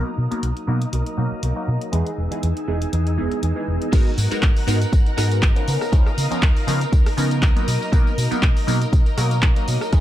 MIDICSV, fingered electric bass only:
0, 0, Header, 1, 3, 480
1, 0, Start_track
1, 0, Tempo, 500000
1, 1850, Time_signature, 4, 2, 24, 8
1, 9604, End_track
2, 0, Start_track
2, 0, Title_t, "Fingered electric bass"
2, 0, Program_c, 0, 33
2, 171, Note_on_c, 0, 47, 82
2, 252, Note_off_c, 0, 47, 0
2, 410, Note_on_c, 0, 35, 83
2, 491, Note_off_c, 0, 35, 0
2, 651, Note_on_c, 0, 47, 88
2, 807, Note_off_c, 0, 47, 0
2, 892, Note_on_c, 0, 35, 90
2, 972, Note_off_c, 0, 35, 0
2, 1131, Note_on_c, 0, 47, 76
2, 1212, Note_off_c, 0, 47, 0
2, 1372, Note_on_c, 0, 35, 83
2, 1452, Note_off_c, 0, 35, 0
2, 1613, Note_on_c, 0, 47, 95
2, 1692, Note_off_c, 0, 47, 0
2, 1852, Note_on_c, 0, 40, 95
2, 1932, Note_off_c, 0, 40, 0
2, 2092, Note_on_c, 0, 28, 80
2, 2172, Note_off_c, 0, 28, 0
2, 2335, Note_on_c, 0, 40, 86
2, 2414, Note_off_c, 0, 40, 0
2, 2572, Note_on_c, 0, 28, 86
2, 2728, Note_off_c, 0, 28, 0
2, 2813, Note_on_c, 0, 40, 91
2, 3052, Note_on_c, 0, 28, 74
2, 3067, Note_off_c, 0, 40, 0
2, 3132, Note_off_c, 0, 28, 0
2, 3291, Note_on_c, 0, 40, 88
2, 3371, Note_off_c, 0, 40, 0
2, 3530, Note_on_c, 0, 28, 95
2, 3611, Note_off_c, 0, 28, 0
2, 3770, Note_on_c, 0, 32, 96
2, 3851, Note_off_c, 0, 32, 0
2, 4009, Note_on_c, 0, 44, 87
2, 4091, Note_off_c, 0, 44, 0
2, 4249, Note_on_c, 0, 32, 94
2, 4331, Note_off_c, 0, 32, 0
2, 4488, Note_on_c, 0, 44, 96
2, 4646, Note_off_c, 0, 44, 0
2, 4729, Note_on_c, 0, 32, 99
2, 4810, Note_off_c, 0, 32, 0
2, 4969, Note_on_c, 0, 44, 78
2, 5209, Note_on_c, 0, 32, 100
2, 5223, Note_off_c, 0, 44, 0
2, 5290, Note_off_c, 0, 32, 0
2, 5451, Note_on_c, 0, 49, 86
2, 5531, Note_off_c, 0, 49, 0
2, 5689, Note_on_c, 0, 37, 102
2, 5770, Note_off_c, 0, 37, 0
2, 5929, Note_on_c, 0, 49, 87
2, 6010, Note_off_c, 0, 49, 0
2, 6168, Note_on_c, 0, 37, 93
2, 6250, Note_off_c, 0, 37, 0
2, 6407, Note_on_c, 0, 49, 94
2, 6565, Note_off_c, 0, 49, 0
2, 6648, Note_on_c, 0, 37, 98
2, 6730, Note_off_c, 0, 37, 0
2, 6888, Note_on_c, 0, 49, 78
2, 7128, Note_on_c, 0, 37, 102
2, 7142, Note_off_c, 0, 49, 0
2, 7210, Note_off_c, 0, 37, 0
2, 7371, Note_on_c, 0, 47, 90
2, 7451, Note_off_c, 0, 47, 0
2, 7608, Note_on_c, 0, 35, 98
2, 7690, Note_off_c, 0, 35, 0
2, 7850, Note_on_c, 0, 47, 89
2, 7931, Note_off_c, 0, 47, 0
2, 8090, Note_on_c, 0, 35, 94
2, 8171, Note_off_c, 0, 35, 0
2, 8330, Note_on_c, 0, 47, 94
2, 8487, Note_off_c, 0, 47, 0
2, 8569, Note_on_c, 0, 35, 98
2, 8650, Note_off_c, 0, 35, 0
2, 8811, Note_on_c, 0, 47, 79
2, 9049, Note_on_c, 0, 35, 102
2, 9063, Note_off_c, 0, 47, 0
2, 9130, Note_off_c, 0, 35, 0
2, 9293, Note_on_c, 0, 47, 89
2, 9372, Note_off_c, 0, 47, 0
2, 9530, Note_on_c, 0, 40, 102
2, 9604, Note_off_c, 0, 40, 0
2, 9604, End_track
3, 0, Start_track
3, 0, Title_t, "Muted fingered electric bass strokes"
3, 303, Note_on_c, 9, 29, 38
3, 399, Note_off_c, 9, 29, 0
3, 1265, Note_on_c, 9, 29, 41
3, 1361, Note_off_c, 9, 29, 0
3, 2224, Note_on_c, 9, 29, 39
3, 2320, Note_off_c, 9, 29, 0
3, 3185, Note_on_c, 9, 29, 39
3, 3281, Note_off_c, 9, 29, 0
3, 4140, Note_on_c, 9, 29, 42
3, 4236, Note_off_c, 9, 29, 0
3, 6060, Note_on_c, 9, 29, 43
3, 6156, Note_off_c, 9, 29, 0
3, 7983, Note_on_c, 9, 29, 44
3, 8079, Note_off_c, 9, 29, 0
3, 9604, End_track
0, 0, End_of_file